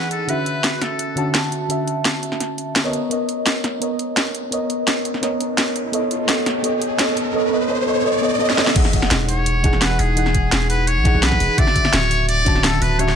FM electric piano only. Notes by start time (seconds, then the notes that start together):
Already playing: E3 D#4 G#4 F#5
0.27 D3 C#4 F#4 E5
1.15 D3 C#4 F#4 A5
1.68 D3 C#4 F#4 E5
2.84 B3 A#4 C#5 D#5
3.10 B3 A#4 C#5 D#5
3.80 B3 A#4 C#5 D#5
4.51 B3 A#4 C#5 D#5
5.21 B3 A#4 C#5 D#5
5.92 B3 A4 C#5 D#5
6.27 B3 A4 C#5 D#5
6.63 B3 A4 C#5 D#5
6.98 B3 A4 C#5 D#5
7.33 B3 A4 C#5 D#5
7.51 B3 A4 C#5 D#5
7.68 B3 A4 C#5 D#5
7.86 B3 A4 C#5 D#5
8.04 B3 A4 C#5 D#5
8.21 B3 A4 C#5 D#5
8.39 B3 A4 C#5 D#5
8.57 B3 A4 C#5 D#5
8.74 E3 D#4 G#4 F#5
9.63 E3 D#4 G#4 F#5
10.15 E3 D#4 G#4 F#5
11.04 E3 D#4 G#4 F#5
11.57 C#3 D3 F#4 E5
12.45 D3 C#4 F#4 A5
12.98 D3 C#4 F#4 E5